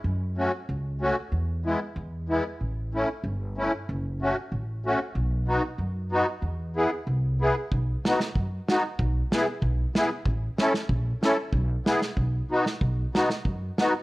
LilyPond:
<<
  \new Staff \with { instrumentName = "Accordion" } { \time 2/4 \key e \major \tempo 4 = 94 r8 <a cis' fis'>8 r8 <a cis' fis'>8 | r8 <gis b e'>8 r8 <gis b e'>8 | r8 <a cis' e'>8 r8 <a cis' e'>8 | r8 <a cis' fis'>8 r8 <a cis' fis'>8 |
r8 <b dis' fis'>8 r8 <b dis' fis'>8 | r8 <b e' gis'>8 r8 <b e' gis'>8 | r8 <b dis' fis'>8 r8 <b dis' fis'>8 | r8 <b e' gis'>8 r8 <b e' gis'>8 |
r8 <cis' e' a'>8 r8 <cis' e' a'>8 | r8 <b e' gis'>8 r8 <b dis' fis'>8 | r8 <b dis' fis'>8 r8 <b dis' fis'>8 | }
  \new Staff \with { instrumentName = "Upright bass" } { \clef bass \time 2/4 \key e \major fis,4 cis,4 | e,4 e,4 | a,,4 g,,4 | fis,,4 a,,4 |
b,,4 fis,4 | e,4 c,4 | b,,8 r8 fis,8 r8 | b,,8 r8 b,,8 r8 |
a,,8 r8 ais,,8 r8 | b,,8 r8 b,,8 r8 | b,,8 r8 fis,8 r8 | }
  \new DrumStaff \with { instrumentName = "Drums" } \drummode { \time 2/4 r4 r4 | r4 r4 | r4 r4 | r4 r4 |
r4 r4 | r4 r4 | bd8 sn16 sn16 bd8 sn8 | bd8 sn8 bd8 sn8 |
bd8 sn16 sn16 bd8 sn8 | bd8 sn16 sn16 bd8. sn16 | bd8 sn16 sn16 bd8 sn8 | }
>>